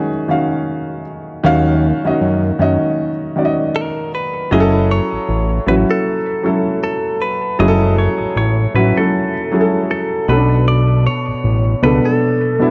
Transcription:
Already playing: D#3 C#4 F#4 G#4 D#5
0.28 D#3 C#4 F#4 F5
1.44 D#2 D#3 C#4 F#4 F5
2.05 F#2 D#3 C#4 F#4 D#5
2.21 F#2
2.59 F#2 D#3 C#4 F#4 D#5
3.36 D#3 C#4 F#4 D5
3.45 D#5
3.76 A#4
4.15 B4
4.51 F#1 F#3 C#4 E4 G#4 D#5
4.60 A4
4.91 C#5
5.13 A1
5.29 A1
5.66 A1 F#3 C#4 E4 F#4 B4
5.91 A4
6.43 F#3 C#4 E4 A4
6.84 A4
7.22 B4
7.59 F#1 F#3 C#4 E4 G#4 D#5
7.68 A4
7.98 C#5
8.20 A1
8.36 A1 C#5
8.75 A1 F#3 C#4 E4 F#4 B4
8.97 F#3 C#4 E4 A4
9.52 F#3 C#4 E4 G#4
9.61 A4
9.91 A4
10.28 B1 B2 B3 C#4 A4 B4
10.37 D4
10.68 D5
11.07 C#5
11.28 A1
11.44 A1
11.83 C#2 B2 B3 D4 A4 B4
12.05 A4
12.59 B2 B3 D4 E4

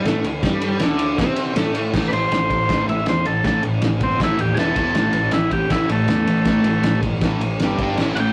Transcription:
0.05 A2 A3, snare, ride
0.24 D2 D3, ride
0.43 G2 G3, kick, snare, ride
0.62 ride
0.80 D2 D3, snare, ride
0.99 ride
1.18 C3 C4, kick, snare, ride
1.36 ride
1.56 A2 A3, snare, ride
1.75 ride
1.94 A1 A2 E3 A3, kick, snare, crash
2.08 B4
2.12 A1 A2 E3 C5, ride
2.31 A1 A2 E3, snare, ride
2.50 A2 E3, kick, ride
2.69 A1 A2 E3 A3, kick, snare, ride
2.88 A1 A2 E3 E5, ride
3.06 E2 A2 E3 C5, snare, ride
3.25 A1 A2 E3 A4, ride
3.44 A1 A2 E3 A3 A4, kick, snare, ride
3.63 A1 A2 E3, ride
3.82 A1 A2 E3, snare, ride
4.00 G1 A2 E3 C4, kick, ride
4.20 A1 A2 E3 A3 E4, kick, snare, ride
4.39 D#2 A2 E3 G4, ride
4.55 E1 E3 B3 G#4, snare, ride
4.59 E4 A4
4.76 E1 E3 B3 E4, kick, ride
4.94 A1 A2 E3 A3, snare, ride
5.13 A1 A2 E3, ride
5.31 A1 A2 E3 E4, snare, ride
5.51 A2 E3 G4, kick, ride
5.70 A1 A2 E3 A3 E4, kick, snare, ride
5.88 A1 A2 E3 A3, ride
6.07 E2 A2 E3, snare, ride
6.26 A1 A2 E3, ride
6.45 A1 A2 E3 A3, kick, snare, ride
6.63 A1 A2 E3, ride
6.82 A1 A2 E3, snare, ride
7.03 G1 A2 E3, kick, ride
7.21 A1 A2 E3, kick, snare, ride
7.25 A3
7.39 A1 A2 E3, ride
7.59 G1 G3, snare, ride
7.63 D4 G4
7.79 G1 G3 D4, kick, ride
7.83 G4
7.97 A1 A3, snare, crash
8.02 C#4 E4
8.15 A1 F#5, ride
8.20 A3 C#4 G5

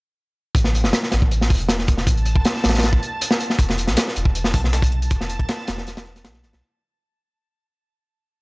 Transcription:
0.55 A1 A5, kick, closed hi-hat
0.64 snare
0.75 closed hi-hat
0.84 E1, snare
0.93 snare, closed hi-hat
1.03 snare
1.12 A1, snare, closed hi-hat
1.22 kick
1.31 closed hi-hat
1.41 snare
1.50 E1, kick, open hi-hat
1.60 closed hi-hat
1.69 snare, closed hi-hat
1.79 snare
1.88 kick, closed hi-hat
1.97 snare
2.07 A1, kick, closed hi-hat
2.17 closed hi-hat
2.25 closed hi-hat
2.35 E1, kick
2.45 snare, closed hi-hat
2.56 snare
2.64 A1, snare, closed hi-hat
2.69 snare, closed hi-hat
2.74 snare, closed hi-hat
2.78 snare, closed hi-hat
2.83 snare, closed hi-hat
2.93 kick
3.03 closed hi-hat
3.21 closed hi-hat
3.31 snare
3.40 closed hi-hat
3.50 snare
3.59 E1, kick, closed hi-hat
3.69 snare
3.78 closed hi-hat
3.87 B1, snare, closed hi-hat
3.97 snare, closed hi-hat
4.08 snare
4.16 E1, closed hi-hat
4.25 kick
4.35 closed hi-hat
4.44 snare
4.54 B1, kick, closed hi-hat, open hi-hat
4.64 snare
4.73 snare, closed hi-hat
4.82 kick, closed hi-hat
4.92 closed hi-hat
5.02 closed hi-hat
5.10 E1, kick, closed hi-hat
5.21 snare
5.29 closed hi-hat
5.39 B1, kick, closed hi-hat
5.49 snare, closed hi-hat
5.58 snare
5.67 E1, snare, closed hi-hat
5.78 snare
5.87 snare, closed hi-hat
5.97 snare, closed hi-hat
6.06 snare, closed hi-hat
6.16 snare, closed hi-hat
6.25 B1, snare, closed hi-hat
6.34 snare, closed hi-hat
6.43 G1, snare, closed hi-hat
6.53 B1, snare, closed hi-hat

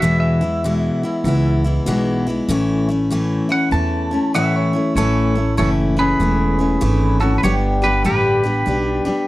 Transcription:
0.00 E2 B2 E3 G#3 B3 E4 E5
0.20 E5
0.41 E3 G#3 B3 E4
0.64 E2 B2 E3 G#3 B3 E4
1.03 E3 G#3 B3 E4
1.24 C#2 E3 G#3 B3 E4
1.64 E3 G#3 B3 E4
1.86 B1 E2 B2 E3 G#3 B3 E4
2.27 E3 G#3 B3 E4
2.48 A1 A2 E3 A3 C#4 E4
2.88 A3 C#4 E4
3.10 A2 E3 A3 C#4 E4
3.49 A3 C#4 E4 F#5
3.71 E2 E3 A3 C#4 E4 A5
4.11 A3 C#4 E4
4.34 A2 E3 A3 C#4 E4 C#5 E5 F#5
4.56 C#5
4.73 A3 C#4 E4
4.95 A1 A2 E3 A3 C#4 E4 A4 C#5
5.35 A3 C#4 E4
5.57 F#1 A2 E3 A3 C#4 E4 A4 C#5
5.97 A3 C#4 E4 G#4 B4
6.19 E1 E3 A3 C#4 E4
6.59 A3 C#4 E4
6.81 G#1 E3 A3 C#4 E4
7.20 A3 C#4 E4 F#4 A4
7.38 B4
7.43 G1 G2 D3 G3 B3 D4 G4 C#5
7.82 G3 B3 D4 G4 B4
8.04 A1 G2 D3 G3 B3 D4 G4 B4
8.43 G3 B3 D4 G4
8.66 B1 G3 B3 D4 G4
9.05 G3 B3 D4 G4, muted upright bass stroke

